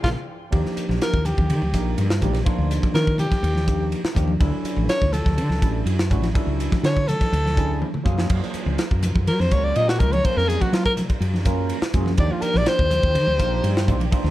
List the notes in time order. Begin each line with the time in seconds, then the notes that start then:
Already playing: G#4 D5 G5 C6
0.03 A#1 G#3 A#3 D4 F4, kick, snare, low conga
0.51 D#2 F3 A#3 D4 D#4 G4, kick, ride
0.66 snare
0.77 muted fretless electric bass stroke, hi-hat pedal, ride
0.89 A#1, snare, high conga
1.02 A#4, snare, ride
1.13 D#2, kick
1.25 G4, hi-hat pedal, ride, high conga, low conga
1.37 D#2, kick, high conga
1.50 D#3, ride
1.62 D2, high conga
1.73 A#1 F3 A#3 D4 D#4 A#4, kick, hi-hat pedal, ride
1.98 G2, ride
2.10 snare
2.21 A#1 F3 A#3 D4 D#4 G4, kick, hi-hat pedal, ride, low conga
2.33 snare, ride, high conga
2.44 F3 A#3 D4 D#4 F4, kick, ride
2.58 D2
2.71 hi-hat pedal, ride
2.82 kick, ride, high conga
2.94 D#3 A#4, snare, ride
3.07 kick
3.18 G4, hi-hat pedal, ride, high conga, low conga
3.31 muted fretless electric bass stroke, kick, snare, ride, high conga
3.43 D#2, ride
3.55 snare, high conga
3.66 F3 A#3 D4 D#4 G4, kick, hi-hat pedal, ride
3.92 ride
4.04 muted fretless electric bass stroke, snare
4.14 D#2 F3 A#3 D4 D#4 G4, kick, hi-hat pedal, ride, low conga
4.28 high conga
4.39 D2 F#3 C#4 D4 E4 A4, kick, ride
4.64 muted fretless electric bass stroke, hi-hat pedal, ride
4.76 A1, high conga
4.89 C#5, snare, ride
5.02 D2, kick
5.13 A4, hi-hat pedal, ride, high conga, low conga
5.25 D2, kick, snare, high conga
5.38 D3, ride
5.49 C#2, snare, high conga
5.61 A1 F#3 C#4 D4 E4 A4, kick, hi-hat pedal, ride
5.86 F#2, ride
5.99 snare
6.10 A1 F#3 C#4 D4 E4 F#4, kick, hi-hat pedal, ride, low conga
6.22 snare, ride, high conga
6.34 F#3 C#4 D4 E4 A4, kick, ride
6.47 C#2
6.60 hi-hat pedal, ride
6.72 kick, snare, ride, high conga
6.83 D3 C#5, snare, ride
6.97 kick
7.08 A4, hi-hat pedal, ride, high conga, low conga
7.20 muted fretless electric bass stroke, kick, snare, ride, high conga
7.32 D2, ride
7.45 snare, high conga, low conga
7.55 F#3 C#4 D4 E4 G#4, kick, hi-hat pedal, ride
7.82 high tom
7.94 muted fretless electric bass stroke, mid tom
8.04 F#2 F#3 A#3 C#4 F4 G#4, kick, hi-hat pedal, low conga
8.18 snare, high conga
8.29 F#2 G#3 F4 A#4, kick, ride, crash
8.43 snare
8.54 muted fretless electric bass stroke, hi-hat pedal, ride
8.66 C#2, high conga
8.78 snare, ride
8.91 F#2, kick
9.02 hi-hat pedal, ride, high conga, low conga
9.15 F#2, kick, high conga
9.27 F#3 A#4, ride
9.39 F2 C5, snare, high conga
9.51 C#2 F#3 A#3 C#4 F4 A#4 C#5, kick, hi-hat pedal, ride
9.64 D5
9.76 A#2 D#5, ride
9.89 F#4, snare
9.99 C#2 F#3 A#3 C#4 F4 A#4, kick, hi-hat pedal, ride, low conga
10.12 C#5, ride, high conga
10.23 F#3 A#3 C#4 F4 A#4 C5, kick, ride
10.37 F2 A#4, snare
10.48 G#4, hi-hat pedal, ride
10.61 F#4, kick, ride, high conga
10.73 F#3 F4, snare, ride
10.85 A#4, kick
10.97 hi-hat pedal, ride, high conga, low conga
11.10 muted fretless electric bass stroke, kick, ride
11.20 F#2, ride
11.34 snare, high conga
11.45 F#3 A#3 C#4 F4 A#4, kick, hi-hat pedal, ride
11.69 ride
11.82 muted fretless electric bass stroke, snare
11.93 F#2 F#3 A#3 C#4 F4 G#4, kick, hi-hat pedal, ride, low conga
12.06 snare, high conga
12.17 D#2 F3 A#3 D4 D#4 G4 D5, kick, ride
12.32 F4
12.42 A#4, muted fretless electric bass stroke, hi-hat pedal, ride
12.54 A#1 D5, snare, high conga
12.66 C5, snare, ride
12.79 D#2, kick
12.91 hi-hat pedal, ride, high conga, low conga
13.03 D#2, kick, high conga
13.15 D#3, ride
13.27 D2, high conga
13.38 A#1 F3 A#3 D4 D#4 A#4, kick, hi-hat pedal, ride
13.64 G2, ride
13.77 snare
13.86 A#1 F3 A#3 D4 D#4 F4, kick, hi-hat pedal, ride, low conga
14.00 ride, high conga
14.11 F3 A#3 D4 D#4 F4, kick, ride
14.24 D2, snare